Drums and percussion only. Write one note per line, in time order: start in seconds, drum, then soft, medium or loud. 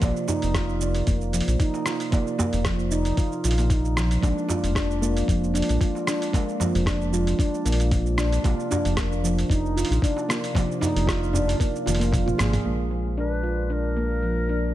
0.02 kick loud
0.02 open hi-hat medium
0.02 darbuka tek medium
0.02 shaker soft
0.16 shaker soft
0.28 darbuka tek medium
0.28 darbuka dum medium
0.28 shaker medium
0.42 open hi-hat soft
0.42 shaker soft
0.54 kick loud
0.54 cross-stick medium
0.54 open hi-hat medium
0.54 shaker soft
0.69 shaker soft
0.81 shaker medium
0.94 open hi-hat soft
0.94 shaker soft
1.07 kick loud
1.07 open hi-hat medium
1.07 shaker soft
1.21 shaker soft
1.33 open hi-hat soft
1.33 shaker medium
1.40 open hi-hat medium
1.48 open hi-hat soft
1.48 shaker soft
1.60 kick loud
1.60 open hi-hat medium
1.60 shaker soft
1.74 darbuka ka medium
1.74 shaker soft
1.86 cross-stick medium
1.86 darbuka tek soft
1.86 shaker medium
2.00 open hi-hat soft
2.00 shaker soft
2.12 kick loud
2.12 open hi-hat soft
2.12 darbuka tek medium
2.12 shaker soft
2.27 shaker soft
2.39 darbuka tek medium
2.39 darbuka dum loud
2.39 shaker medium
2.53 open hi-hat soft
2.53 shaker soft
2.65 kick loud
2.65 cross-stick medium
2.65 open hi-hat medium
2.65 shaker soft
2.79 shaker soft
2.91 shaker medium
3.05 open hi-hat soft
3.05 shaker soft
3.17 kick loud
3.17 open hi-hat soft
3.17 shaker soft
3.32 shaker soft
3.44 open hi-hat soft
3.44 darbuka ka soft
3.44 shaker medium
3.51 open hi-hat medium
3.58 open hi-hat soft
3.58 darbuka tek soft
3.58 shaker soft
3.70 kick loud
3.70 open hi-hat soft
3.70 shaker soft
3.85 shaker soft
3.97 cross-stick medium
3.97 darbuka ka soft
3.97 darbuka tek soft
3.97 shaker medium
4.11 open hi-hat soft
4.11 shaker soft
4.23 kick loud
4.23 open hi-hat soft
4.23 darbuka tek medium
4.23 shaker soft
4.38 shaker soft
4.49 darbuka tek medium
4.49 darbuka dum medium
4.49 shaker medium
4.64 open hi-hat soft
4.64 shaker soft
4.75 kick loud
4.75 cross-stick medium
4.75 open hi-hat medium
4.75 shaker soft
4.91 shaker soft
5.03 shaker medium
5.17 open hi-hat soft
5.17 shaker soft
5.28 kick loud
5.28 open hi-hat medium
5.28 shaker soft
5.44 shaker soft
5.55 open hi-hat soft
5.55 shaker medium
5.62 open hi-hat medium
5.69 open hi-hat soft
5.69 shaker soft
5.81 kick loud
5.81 open hi-hat soft
5.81 shaker soft
5.95 darbuka ka medium
5.95 shaker soft
6.07 cross-stick medium
6.07 darbuka tek soft
6.07 shaker medium
6.22 open hi-hat soft
6.22 shaker soft
6.33 kick medium
6.33 open hi-hat medium
6.33 darbuka tek medium
6.33 shaker soft
6.49 shaker soft
6.60 darbuka tek medium
6.60 darbuka dum medium
6.60 shaker medium
6.75 open hi-hat soft
6.75 shaker soft
6.86 kick medium
6.86 cross-stick medium
6.86 open hi-hat medium
6.86 shaker soft
7.01 shaker soft
7.13 shaker medium
7.27 open hi-hat soft
7.27 shaker soft
7.39 kick loud
7.39 open hi-hat medium
7.39 shaker soft
7.54 shaker soft
7.66 open hi-hat soft
7.66 darbuka ka soft
7.66 shaker medium
7.72 open hi-hat medium
7.80 open hi-hat soft
7.80 darbuka tek soft
7.80 shaker soft
7.91 kick loud
7.91 open hi-hat medium
7.91 shaker soft
8.06 shaker soft
8.18 cross-stick medium
8.18 darbuka ka soft
8.18 darbuka tek soft
8.18 shaker medium
8.32 open hi-hat soft
8.32 shaker soft
8.44 kick medium
8.44 open hi-hat medium
8.44 darbuka tek medium
8.44 shaker soft
8.60 shaker soft
8.71 darbuka tek medium
8.71 darbuka dum medium
8.71 shaker medium
8.85 open hi-hat soft
8.85 shaker soft
8.97 kick medium
8.97 cross-stick medium
8.97 open hi-hat medium
8.97 shaker soft
9.12 shaker soft
9.25 shaker medium
9.39 open hi-hat soft
9.39 shaker soft
9.50 kick loud
9.50 open hi-hat medium
9.50 shaker soft
9.66 shaker soft
9.78 open hi-hat soft
9.78 shaker medium
9.85 open hi-hat medium
9.92 open hi-hat soft
9.92 shaker soft
10.02 kick loud
10.02 open hi-hat medium
10.02 shaker soft
10.17 darbuka ka medium
10.17 shaker soft
10.29 cross-stick medium
10.29 darbuka tek soft
10.29 shaker medium
10.44 open hi-hat soft
10.44 shaker soft
10.55 kick medium
10.55 open hi-hat medium
10.55 darbuka tek medium
10.55 shaker soft
10.69 darbuka ka soft
10.69 shaker soft
10.81 open hi-hat soft
10.81 darbuka tek medium
10.81 darbuka dum medium
10.81 shaker medium
10.96 open hi-hat soft
10.96 shaker soft
11.07 kick loud
11.07 cross-stick medium
11.07 open hi-hat medium
11.07 shaker soft
11.23 shaker soft
11.33 darbuka dum medium
11.33 shaker medium
11.48 open hi-hat soft
11.48 darbuka tek soft
11.48 shaker soft
11.60 kick loud
11.60 open hi-hat medium
11.60 shaker soft
11.76 shaker soft
11.86 open hi-hat soft
11.86 high tom medium
11.86 darbuka ka medium
11.86 shaker medium
11.95 open hi-hat medium
12.01 open hi-hat soft
12.01 darbuka tek soft
12.01 shaker soft
12.13 kick loud
12.13 open hi-hat medium
12.13 mid tom medium
12.13 shaker soft
12.28 mid tom medium
12.28 shaker soft
12.38 cross-stick medium
12.38 mid tom medium
12.38 open hi-hat soft
12.38 darbuka ka medium
12.38 darbuka tek soft
12.38 shaker medium
12.53 mid tom medium
12.53 open hi-hat soft
12.53 shaker soft